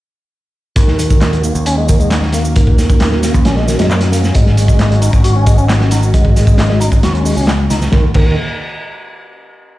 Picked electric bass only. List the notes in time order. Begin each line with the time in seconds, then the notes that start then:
0.76 D#2
1.55 D#2
3.34 D#2
3.45 A#1
3.79 F#2
4.35 G#1
5.13 G#1
6.92 G#1
7.03 D#2
7.37 C#2
7.70 C#2
7.93 D#2
8.15 D#2